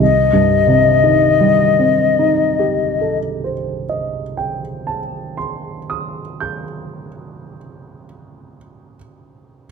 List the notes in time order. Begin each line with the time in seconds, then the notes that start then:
0.00 C2 D#5
0.33 G2
0.67 C3
1.04 D#3
1.41 G3
1.79 C4
2.19 D#4
2.59 G4
3.01 A4
3.44 C5
3.89 D#5
4.37 G5
4.87 A5
5.37 C6
5.90 D#6
6.40 G6